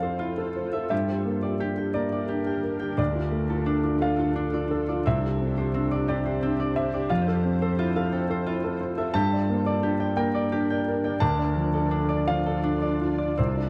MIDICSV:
0, 0, Header, 1, 4, 480
1, 0, Start_track
1, 0, Tempo, 692841
1, 633, Time_signature, 6, 3, 24, 8
1, 3979, Tempo, 680272
1, 6859, Tempo, 699301
1, 8299, Tempo, 732601
1, 9459, End_track
2, 0, Start_track
2, 0, Title_t, "Harp"
2, 0, Program_c, 0, 46
2, 0, Note_on_c, 0, 65, 67
2, 0, Note_on_c, 0, 69, 46
2, 0, Note_on_c, 0, 77, 49
2, 17, Note_on_c, 0, 72, 48
2, 123, Note_off_c, 0, 65, 0
2, 131, Note_on_c, 0, 65, 67
2, 504, Note_on_c, 0, 76, 47
2, 626, Note_on_c, 0, 67, 66
2, 646, Note_off_c, 0, 65, 0
2, 647, Note_off_c, 0, 69, 0
2, 648, Note_off_c, 0, 76, 0
2, 649, Note_off_c, 0, 77, 0
2, 651, Note_off_c, 0, 72, 0
2, 987, Note_on_c, 0, 74, 53
2, 1102, Note_off_c, 0, 67, 0
2, 1110, Note_on_c, 0, 67, 73
2, 1230, Note_on_c, 0, 79, 52
2, 1351, Note_on_c, 0, 70, 46
2, 1461, Note_off_c, 0, 74, 0
2, 1470, Note_on_c, 0, 74, 52
2, 1574, Note_off_c, 0, 67, 0
2, 1582, Note_on_c, 0, 67, 68
2, 1700, Note_off_c, 0, 79, 0
2, 1708, Note_on_c, 0, 79, 46
2, 1928, Note_off_c, 0, 79, 0
2, 1937, Note_on_c, 0, 79, 48
2, 2057, Note_on_c, 0, 62, 68
2, 2082, Note_off_c, 0, 79, 0
2, 2085, Note_off_c, 0, 67, 0
2, 2089, Note_off_c, 0, 70, 0
2, 2422, Note_on_c, 0, 69, 54
2, 2528, Note_off_c, 0, 62, 0
2, 2536, Note_on_c, 0, 62, 73
2, 2647, Note_off_c, 0, 74, 0
2, 2655, Note_on_c, 0, 74, 57
2, 2781, Note_on_c, 0, 65, 51
2, 2894, Note_off_c, 0, 69, 0
2, 2902, Note_on_c, 0, 69, 53
2, 3009, Note_off_c, 0, 62, 0
2, 3017, Note_on_c, 0, 62, 70
2, 3135, Note_off_c, 0, 74, 0
2, 3144, Note_on_c, 0, 74, 53
2, 3375, Note_off_c, 0, 74, 0
2, 3384, Note_on_c, 0, 74, 49
2, 3503, Note_on_c, 0, 60, 83
2, 3520, Note_off_c, 0, 65, 0
2, 3521, Note_off_c, 0, 69, 0
2, 3863, Note_on_c, 0, 72, 59
2, 3969, Note_off_c, 0, 60, 0
2, 3978, Note_on_c, 0, 60, 78
2, 4091, Note_off_c, 0, 74, 0
2, 4099, Note_on_c, 0, 74, 60
2, 4216, Note_on_c, 0, 67, 54
2, 4331, Note_off_c, 0, 72, 0
2, 4339, Note_on_c, 0, 72, 58
2, 4452, Note_off_c, 0, 60, 0
2, 4460, Note_on_c, 0, 60, 78
2, 4573, Note_off_c, 0, 74, 0
2, 4582, Note_on_c, 0, 74, 63
2, 4812, Note_off_c, 0, 74, 0
2, 4821, Note_on_c, 0, 74, 57
2, 4932, Note_on_c, 0, 65, 83
2, 4951, Note_off_c, 0, 62, 0
2, 4953, Note_off_c, 0, 67, 0
2, 4957, Note_off_c, 0, 74, 0
2, 5292, Note_off_c, 0, 72, 0
2, 5301, Note_on_c, 0, 72, 68
2, 5412, Note_off_c, 0, 65, 0
2, 5421, Note_on_c, 0, 65, 88
2, 5542, Note_on_c, 0, 77, 68
2, 5659, Note_on_c, 0, 69, 56
2, 5777, Note_off_c, 0, 72, 0
2, 5786, Note_on_c, 0, 72, 63
2, 5890, Note_off_c, 0, 65, 0
2, 5899, Note_on_c, 0, 65, 84
2, 6260, Note_on_c, 0, 76, 64
2, 6383, Note_on_c, 0, 67, 89
2, 6395, Note_off_c, 0, 60, 0
2, 6395, Note_off_c, 0, 65, 0
2, 6395, Note_off_c, 0, 69, 0
2, 6397, Note_off_c, 0, 76, 0
2, 6397, Note_off_c, 0, 77, 0
2, 6398, Note_off_c, 0, 72, 0
2, 6744, Note_on_c, 0, 74, 67
2, 6853, Note_off_c, 0, 67, 0
2, 6862, Note_on_c, 0, 67, 82
2, 6978, Note_on_c, 0, 79, 66
2, 7095, Note_on_c, 0, 70, 62
2, 7208, Note_off_c, 0, 74, 0
2, 7216, Note_on_c, 0, 74, 64
2, 7329, Note_off_c, 0, 67, 0
2, 7337, Note_on_c, 0, 67, 85
2, 7453, Note_off_c, 0, 79, 0
2, 7461, Note_on_c, 0, 79, 65
2, 7685, Note_off_c, 0, 79, 0
2, 7693, Note_on_c, 0, 79, 58
2, 7808, Note_on_c, 0, 62, 88
2, 7832, Note_off_c, 0, 79, 0
2, 7833, Note_off_c, 0, 70, 0
2, 7834, Note_off_c, 0, 67, 0
2, 8168, Note_on_c, 0, 69, 58
2, 8282, Note_off_c, 0, 62, 0
2, 8290, Note_on_c, 0, 62, 81
2, 8399, Note_off_c, 0, 74, 0
2, 8407, Note_on_c, 0, 74, 63
2, 8527, Note_on_c, 0, 65, 57
2, 8642, Note_off_c, 0, 69, 0
2, 8650, Note_on_c, 0, 69, 61
2, 8757, Note_off_c, 0, 62, 0
2, 8765, Note_on_c, 0, 62, 79
2, 8877, Note_off_c, 0, 74, 0
2, 8885, Note_on_c, 0, 74, 57
2, 9116, Note_off_c, 0, 74, 0
2, 9124, Note_on_c, 0, 74, 54
2, 9249, Note_on_c, 0, 60, 69
2, 9270, Note_off_c, 0, 65, 0
2, 9272, Note_off_c, 0, 69, 0
2, 9459, Note_off_c, 0, 60, 0
2, 9459, Note_off_c, 0, 62, 0
2, 9459, Note_off_c, 0, 74, 0
2, 9459, End_track
3, 0, Start_track
3, 0, Title_t, "Ambient pad"
3, 0, Program_c, 1, 92
3, 0, Note_on_c, 1, 65, 68
3, 0, Note_on_c, 1, 69, 63
3, 0, Note_on_c, 1, 72, 68
3, 605, Note_off_c, 1, 72, 0
3, 606, Note_off_c, 1, 69, 0
3, 608, Note_off_c, 1, 65, 0
3, 633, Note_on_c, 1, 62, 62
3, 633, Note_on_c, 1, 70, 68
3, 635, Note_on_c, 1, 67, 66
3, 2057, Note_on_c, 1, 69, 64
3, 2059, Note_on_c, 1, 65, 64
3, 2070, Note_off_c, 1, 70, 0
3, 2071, Note_off_c, 1, 67, 0
3, 3496, Note_off_c, 1, 65, 0
3, 3496, Note_off_c, 1, 69, 0
3, 3504, Note_on_c, 1, 72, 65
3, 3506, Note_on_c, 1, 67, 62
3, 4935, Note_off_c, 1, 62, 0
3, 4937, Note_off_c, 1, 67, 0
3, 4941, Note_on_c, 1, 65, 66
3, 4946, Note_on_c, 1, 69, 63
3, 6374, Note_on_c, 1, 74, 69
3, 6375, Note_off_c, 1, 72, 0
3, 6375, Note_on_c, 1, 70, 69
3, 6376, Note_on_c, 1, 62, 69
3, 6377, Note_off_c, 1, 65, 0
3, 6380, Note_off_c, 1, 69, 0
3, 7814, Note_off_c, 1, 70, 0
3, 7814, Note_on_c, 1, 65, 73
3, 9244, Note_on_c, 1, 67, 66
3, 9255, Note_off_c, 1, 65, 0
3, 9459, Note_off_c, 1, 62, 0
3, 9459, Note_off_c, 1, 67, 0
3, 9459, Note_off_c, 1, 74, 0
3, 9459, End_track
4, 0, Start_track
4, 0, Title_t, "Grand piano"
4, 0, Program_c, 2, 0
4, 0, Control_c, 2, 64, 127
4, 0, Note_on_c, 2, 41, 65
4, 0, Note_on_c, 2, 60, 45
4, 0, Note_on_c, 2, 64, 44
4, 0, Note_on_c, 2, 69, 46
4, 0, Note_on_c, 2, 72, 70
4, 0, Note_on_c, 2, 77, 84
4, 15, Note_off_c, 2, 69, 0
4, 15, Note_on_c, 2, 69, 46
4, 91, Note_off_c, 2, 60, 0
4, 144, Note_off_c, 2, 64, 0
4, 144, Note_on_c, 2, 64, 45
4, 216, Note_off_c, 2, 69, 0
4, 262, Note_on_c, 2, 69, 48
4, 341, Note_off_c, 2, 64, 0
4, 390, Note_off_c, 2, 72, 0
4, 390, Note_on_c, 2, 72, 44
4, 460, Note_off_c, 2, 69, 0
4, 513, Note_on_c, 2, 69, 47
4, 585, Note_off_c, 2, 72, 0
4, 597, Note_off_c, 2, 77, 0
4, 601, Note_off_c, 2, 41, 0
4, 625, Note_on_c, 2, 76, 75
4, 631, Note_on_c, 2, 43, 61
4, 634, Note_off_c, 2, 69, 0
4, 646, Control_c, 2, 64, 0
4, 738, Control_c, 2, 64, 127
4, 753, Note_on_c, 2, 67, 44
4, 868, Note_on_c, 2, 58, 47
4, 946, Note_off_c, 2, 67, 0
4, 998, Note_on_c, 2, 67, 45
4, 1063, Note_off_c, 2, 58, 0
4, 1114, Note_on_c, 2, 62, 47
4, 1188, Note_off_c, 2, 67, 0
4, 1232, Note_on_c, 2, 67, 47
4, 1305, Note_off_c, 2, 62, 0
4, 1321, Note_off_c, 2, 76, 0
4, 1344, Note_on_c, 2, 74, 77
4, 1352, Note_on_c, 2, 58, 50
4, 1424, Note_off_c, 2, 67, 0
4, 1467, Note_on_c, 2, 67, 48
4, 1544, Note_off_c, 2, 58, 0
4, 1592, Note_on_c, 2, 62, 46
4, 1661, Note_off_c, 2, 67, 0
4, 1705, Note_on_c, 2, 67, 47
4, 1784, Note_off_c, 2, 62, 0
4, 1824, Note_on_c, 2, 70, 53
4, 1900, Note_off_c, 2, 67, 0
4, 1945, Note_on_c, 2, 67, 49
4, 2019, Note_off_c, 2, 70, 0
4, 2038, Note_off_c, 2, 74, 0
4, 2042, Note_off_c, 2, 43, 0
4, 2064, Note_on_c, 2, 38, 64
4, 2067, Note_off_c, 2, 67, 0
4, 2068, Note_on_c, 2, 74, 79
4, 2084, Control_c, 2, 64, 0
4, 2183, Note_on_c, 2, 65, 51
4, 2201, Control_c, 2, 64, 127
4, 2301, Note_on_c, 2, 57, 51
4, 2376, Note_off_c, 2, 65, 0
4, 2425, Note_on_c, 2, 65, 48
4, 2494, Note_off_c, 2, 57, 0
4, 2540, Note_on_c, 2, 62, 51
4, 2616, Note_off_c, 2, 65, 0
4, 2660, Note_on_c, 2, 65, 52
4, 2733, Note_off_c, 2, 62, 0
4, 2755, Note_off_c, 2, 74, 0
4, 2777, Note_on_c, 2, 57, 49
4, 2785, Note_on_c, 2, 77, 81
4, 2854, Note_off_c, 2, 65, 0
4, 2902, Note_on_c, 2, 65, 49
4, 2972, Note_off_c, 2, 57, 0
4, 3021, Note_on_c, 2, 62, 51
4, 3095, Note_off_c, 2, 65, 0
4, 3144, Note_on_c, 2, 65, 49
4, 3214, Note_off_c, 2, 62, 0
4, 3263, Note_on_c, 2, 69, 53
4, 3335, Note_off_c, 2, 65, 0
4, 3386, Note_on_c, 2, 65, 49
4, 3454, Note_off_c, 2, 69, 0
4, 3471, Note_off_c, 2, 38, 0
4, 3475, Note_off_c, 2, 77, 0
4, 3504, Note_off_c, 2, 65, 0
4, 3511, Note_on_c, 2, 36, 74
4, 3513, Note_on_c, 2, 76, 85
4, 3514, Control_c, 2, 64, 0
4, 3627, Control_c, 2, 64, 127
4, 3631, Note_on_c, 2, 67, 49
4, 3751, Note_on_c, 2, 60, 51
4, 3817, Note_off_c, 2, 67, 0
4, 3870, Note_on_c, 2, 67, 52
4, 3936, Note_off_c, 2, 60, 0
4, 3994, Note_on_c, 2, 62, 52
4, 4056, Note_off_c, 2, 67, 0
4, 4115, Note_on_c, 2, 67, 57
4, 4179, Note_off_c, 2, 62, 0
4, 4197, Note_off_c, 2, 76, 0
4, 4221, Note_on_c, 2, 74, 83
4, 4227, Note_on_c, 2, 60, 56
4, 4299, Note_off_c, 2, 67, 0
4, 4349, Note_on_c, 2, 67, 56
4, 4415, Note_off_c, 2, 60, 0
4, 4471, Note_on_c, 2, 62, 57
4, 4536, Note_off_c, 2, 67, 0
4, 4585, Note_on_c, 2, 67, 56
4, 4656, Note_off_c, 2, 62, 0
4, 4670, Note_off_c, 2, 74, 0
4, 4697, Note_on_c, 2, 76, 87
4, 4708, Note_on_c, 2, 72, 57
4, 4772, Note_off_c, 2, 67, 0
4, 4828, Note_on_c, 2, 67, 57
4, 4893, Note_off_c, 2, 72, 0
4, 4912, Note_off_c, 2, 36, 0
4, 4918, Note_off_c, 2, 76, 0
4, 4938, Note_on_c, 2, 77, 81
4, 4941, Note_off_c, 2, 67, 0
4, 4942, Note_on_c, 2, 41, 76
4, 4949, Control_c, 2, 64, 0
4, 5051, Control_c, 2, 64, 127
4, 5063, Note_on_c, 2, 69, 53
4, 5184, Note_on_c, 2, 60, 54
4, 5251, Note_off_c, 2, 69, 0
4, 5306, Note_on_c, 2, 69, 59
4, 5372, Note_off_c, 2, 60, 0
4, 5425, Note_on_c, 2, 64, 57
4, 5493, Note_off_c, 2, 69, 0
4, 5545, Note_on_c, 2, 69, 58
4, 5613, Note_off_c, 2, 64, 0
4, 5664, Note_on_c, 2, 60, 60
4, 5733, Note_off_c, 2, 69, 0
4, 5782, Note_on_c, 2, 69, 61
4, 5851, Note_off_c, 2, 60, 0
4, 5906, Note_on_c, 2, 64, 56
4, 5970, Note_off_c, 2, 69, 0
4, 6024, Note_on_c, 2, 69, 59
4, 6092, Note_off_c, 2, 64, 0
4, 6140, Note_on_c, 2, 72, 63
4, 6211, Note_off_c, 2, 69, 0
4, 6261, Note_on_c, 2, 69, 55
4, 6329, Note_off_c, 2, 72, 0
4, 6347, Note_off_c, 2, 77, 0
4, 6350, Note_off_c, 2, 41, 0
4, 6373, Note_on_c, 2, 81, 102
4, 6378, Note_off_c, 2, 69, 0
4, 6380, Note_on_c, 2, 43, 82
4, 6387, Control_c, 2, 64, 0
4, 6511, Note_on_c, 2, 74, 56
4, 6518, Control_c, 2, 64, 127
4, 6626, Note_on_c, 2, 58, 62
4, 6696, Note_off_c, 2, 74, 0
4, 6746, Note_on_c, 2, 74, 62
4, 6814, Note_off_c, 2, 58, 0
4, 6864, Note_on_c, 2, 62, 58
4, 6933, Note_off_c, 2, 74, 0
4, 6979, Note_on_c, 2, 74, 60
4, 7050, Note_off_c, 2, 62, 0
4, 7067, Note_off_c, 2, 81, 0
4, 7095, Note_on_c, 2, 79, 84
4, 7096, Note_on_c, 2, 58, 66
4, 7168, Note_off_c, 2, 74, 0
4, 7225, Note_on_c, 2, 74, 59
4, 7288, Note_off_c, 2, 58, 0
4, 7348, Note_on_c, 2, 62, 56
4, 7413, Note_off_c, 2, 74, 0
4, 7471, Note_on_c, 2, 74, 56
4, 7534, Note_off_c, 2, 62, 0
4, 7548, Note_off_c, 2, 79, 0
4, 7584, Note_on_c, 2, 70, 63
4, 7655, Note_off_c, 2, 74, 0
4, 7700, Note_on_c, 2, 74, 61
4, 7771, Note_off_c, 2, 70, 0
4, 7789, Note_off_c, 2, 43, 0
4, 7805, Note_on_c, 2, 81, 105
4, 7815, Note_on_c, 2, 38, 82
4, 7817, Note_off_c, 2, 74, 0
4, 7827, Control_c, 2, 64, 0
4, 7923, Control_c, 2, 64, 127
4, 7933, Note_on_c, 2, 74, 55
4, 8050, Note_on_c, 2, 53, 55
4, 8126, Note_off_c, 2, 74, 0
4, 8177, Note_on_c, 2, 74, 54
4, 8247, Note_off_c, 2, 53, 0
4, 8293, Note_on_c, 2, 62, 54
4, 8370, Note_off_c, 2, 74, 0
4, 8413, Note_on_c, 2, 74, 59
4, 8485, Note_off_c, 2, 62, 0
4, 8504, Note_off_c, 2, 81, 0
4, 8530, Note_on_c, 2, 77, 93
4, 8536, Note_on_c, 2, 53, 58
4, 8605, Note_off_c, 2, 74, 0
4, 8659, Note_on_c, 2, 74, 51
4, 8726, Note_off_c, 2, 53, 0
4, 8773, Note_on_c, 2, 62, 55
4, 8847, Note_off_c, 2, 74, 0
4, 8892, Note_on_c, 2, 74, 49
4, 8964, Note_off_c, 2, 62, 0
4, 9013, Note_on_c, 2, 65, 53
4, 9084, Note_off_c, 2, 74, 0
4, 9133, Note_on_c, 2, 74, 45
4, 9206, Note_off_c, 2, 65, 0
4, 9226, Note_off_c, 2, 77, 0
4, 9229, Note_off_c, 2, 38, 0
4, 9255, Note_off_c, 2, 74, 0
4, 9258, Note_on_c, 2, 72, 68
4, 9260, Note_on_c, 2, 36, 66
4, 9266, Control_c, 2, 64, 0
4, 9381, Note_on_c, 2, 74, 48
4, 9386, Control_c, 2, 64, 127
4, 9459, Note_off_c, 2, 36, 0
4, 9459, Note_off_c, 2, 72, 0
4, 9459, Note_off_c, 2, 74, 0
4, 9459, End_track
0, 0, End_of_file